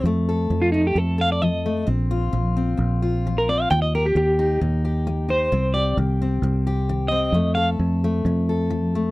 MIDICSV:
0, 0, Header, 1, 5, 480
1, 0, Start_track
1, 0, Tempo, 455235
1, 62, Time_signature, 4, 2, 24, 8
1, 9607, End_track
2, 0, Start_track
2, 0, Title_t, "Clean electric guitar"
2, 0, Program_c, 0, 27
2, 650, Note_on_c, 0, 65, 72
2, 757, Note_off_c, 0, 65, 0
2, 761, Note_on_c, 0, 63, 86
2, 897, Note_off_c, 0, 63, 0
2, 916, Note_on_c, 0, 67, 69
2, 1033, Note_off_c, 0, 67, 0
2, 1033, Note_on_c, 0, 69, 74
2, 1262, Note_off_c, 0, 69, 0
2, 1278, Note_on_c, 0, 77, 94
2, 1388, Note_off_c, 0, 77, 0
2, 1393, Note_on_c, 0, 74, 80
2, 1496, Note_off_c, 0, 74, 0
2, 1496, Note_on_c, 0, 75, 88
2, 1981, Note_off_c, 0, 75, 0
2, 3565, Note_on_c, 0, 70, 82
2, 3668, Note_off_c, 0, 70, 0
2, 3681, Note_on_c, 0, 74, 83
2, 3811, Note_off_c, 0, 74, 0
2, 3811, Note_on_c, 0, 77, 85
2, 3905, Note_off_c, 0, 77, 0
2, 3909, Note_on_c, 0, 79, 103
2, 4022, Note_off_c, 0, 79, 0
2, 4026, Note_on_c, 0, 75, 85
2, 4138, Note_off_c, 0, 75, 0
2, 4164, Note_on_c, 0, 70, 80
2, 4280, Note_off_c, 0, 70, 0
2, 4283, Note_on_c, 0, 67, 71
2, 4387, Note_off_c, 0, 67, 0
2, 4397, Note_on_c, 0, 67, 71
2, 4838, Note_off_c, 0, 67, 0
2, 5591, Note_on_c, 0, 72, 94
2, 6034, Note_off_c, 0, 72, 0
2, 6050, Note_on_c, 0, 74, 86
2, 6289, Note_off_c, 0, 74, 0
2, 7469, Note_on_c, 0, 75, 94
2, 7930, Note_off_c, 0, 75, 0
2, 7959, Note_on_c, 0, 77, 94
2, 8109, Note_off_c, 0, 77, 0
2, 9607, End_track
3, 0, Start_track
3, 0, Title_t, "Steel-string acoustic guitar"
3, 0, Program_c, 1, 25
3, 57, Note_on_c, 1, 41, 74
3, 64, Note_on_c, 1, 57, 64
3, 302, Note_on_c, 1, 69, 64
3, 496, Note_off_c, 1, 41, 0
3, 530, Note_on_c, 1, 53, 56
3, 767, Note_off_c, 1, 57, 0
3, 779, Note_on_c, 1, 57, 58
3, 973, Note_off_c, 1, 53, 0
3, 1013, Note_on_c, 1, 48, 66
3, 1233, Note_off_c, 1, 69, 0
3, 1246, Note_on_c, 1, 69, 62
3, 1455, Note_off_c, 1, 48, 0
3, 1499, Note_on_c, 1, 53, 66
3, 1734, Note_off_c, 1, 57, 0
3, 1747, Note_on_c, 1, 57, 62
3, 1938, Note_off_c, 1, 53, 0
3, 1950, Note_off_c, 1, 69, 0
3, 1960, Note_off_c, 1, 57, 0
3, 1968, Note_on_c, 1, 46, 75
3, 1974, Note_on_c, 1, 60, 64
3, 2222, Note_on_c, 1, 65, 69
3, 2413, Note_off_c, 1, 46, 0
3, 2453, Note_on_c, 1, 53, 61
3, 2693, Note_off_c, 1, 60, 0
3, 2706, Note_on_c, 1, 60, 63
3, 2895, Note_off_c, 1, 53, 0
3, 2925, Note_on_c, 1, 41, 63
3, 3176, Note_off_c, 1, 65, 0
3, 3189, Note_on_c, 1, 65, 62
3, 3371, Note_off_c, 1, 41, 0
3, 3444, Note_on_c, 1, 53, 60
3, 3666, Note_off_c, 1, 60, 0
3, 3680, Note_on_c, 1, 60, 59
3, 3870, Note_off_c, 1, 53, 0
3, 3886, Note_off_c, 1, 60, 0
3, 3904, Note_on_c, 1, 51, 84
3, 3907, Note_off_c, 1, 65, 0
3, 4163, Note_on_c, 1, 67, 71
3, 4340, Note_off_c, 1, 51, 0
3, 4386, Note_on_c, 1, 58, 61
3, 4628, Note_on_c, 1, 63, 68
3, 4821, Note_off_c, 1, 58, 0
3, 4866, Note_on_c, 1, 46, 69
3, 5097, Note_off_c, 1, 67, 0
3, 5110, Note_on_c, 1, 67, 68
3, 5300, Note_off_c, 1, 46, 0
3, 5344, Note_on_c, 1, 58, 62
3, 5560, Note_off_c, 1, 63, 0
3, 5573, Note_on_c, 1, 63, 58
3, 5779, Note_off_c, 1, 58, 0
3, 5791, Note_off_c, 1, 63, 0
3, 5800, Note_off_c, 1, 67, 0
3, 5820, Note_on_c, 1, 48, 84
3, 5826, Note_on_c, 1, 60, 57
3, 6055, Note_on_c, 1, 67, 67
3, 6257, Note_off_c, 1, 48, 0
3, 6304, Note_on_c, 1, 51, 62
3, 6550, Note_off_c, 1, 60, 0
3, 6554, Note_on_c, 1, 60, 63
3, 6738, Note_off_c, 1, 51, 0
3, 6783, Note_on_c, 1, 43, 73
3, 7017, Note_off_c, 1, 67, 0
3, 7030, Note_on_c, 1, 67, 70
3, 7217, Note_off_c, 1, 43, 0
3, 7268, Note_on_c, 1, 51, 70
3, 7496, Note_off_c, 1, 60, 0
3, 7500, Note_on_c, 1, 60, 58
3, 7700, Note_off_c, 1, 51, 0
3, 7718, Note_off_c, 1, 67, 0
3, 7739, Note_on_c, 1, 41, 82
3, 7742, Note_off_c, 1, 60, 0
3, 7746, Note_on_c, 1, 57, 69
3, 7979, Note_on_c, 1, 69, 67
3, 8175, Note_off_c, 1, 41, 0
3, 8463, Note_off_c, 1, 57, 0
3, 8479, Note_on_c, 1, 57, 70
3, 8707, Note_on_c, 1, 48, 70
3, 8939, Note_off_c, 1, 69, 0
3, 8953, Note_on_c, 1, 69, 65
3, 9139, Note_off_c, 1, 48, 0
3, 9178, Note_on_c, 1, 53, 65
3, 9427, Note_off_c, 1, 57, 0
3, 9440, Note_on_c, 1, 57, 64
3, 9607, Note_off_c, 1, 53, 0
3, 9607, Note_off_c, 1, 57, 0
3, 9607, Note_off_c, 1, 69, 0
3, 9607, End_track
4, 0, Start_track
4, 0, Title_t, "Fingered electric bass"
4, 0, Program_c, 2, 33
4, 37, Note_on_c, 2, 41, 93
4, 497, Note_off_c, 2, 41, 0
4, 528, Note_on_c, 2, 41, 92
4, 983, Note_off_c, 2, 41, 0
4, 1004, Note_on_c, 2, 41, 85
4, 1933, Note_off_c, 2, 41, 0
4, 1976, Note_on_c, 2, 34, 91
4, 2428, Note_off_c, 2, 34, 0
4, 2456, Note_on_c, 2, 34, 86
4, 2908, Note_off_c, 2, 34, 0
4, 2935, Note_on_c, 2, 34, 90
4, 3858, Note_off_c, 2, 34, 0
4, 3909, Note_on_c, 2, 39, 90
4, 4354, Note_off_c, 2, 39, 0
4, 4376, Note_on_c, 2, 39, 96
4, 4827, Note_off_c, 2, 39, 0
4, 4864, Note_on_c, 2, 39, 89
4, 5781, Note_off_c, 2, 39, 0
4, 5821, Note_on_c, 2, 36, 95
4, 6268, Note_off_c, 2, 36, 0
4, 6296, Note_on_c, 2, 36, 98
4, 6745, Note_off_c, 2, 36, 0
4, 6768, Note_on_c, 2, 36, 92
4, 7692, Note_off_c, 2, 36, 0
4, 7721, Note_on_c, 2, 41, 89
4, 8176, Note_off_c, 2, 41, 0
4, 8217, Note_on_c, 2, 41, 99
4, 8665, Note_off_c, 2, 41, 0
4, 8697, Note_on_c, 2, 41, 98
4, 9607, Note_off_c, 2, 41, 0
4, 9607, End_track
5, 0, Start_track
5, 0, Title_t, "Muted steel-string acoustic guitar strokes"
5, 3918, Note_on_c, 9, 29, 71
5, 4023, Note_off_c, 9, 29, 0
5, 9607, End_track
0, 0, End_of_file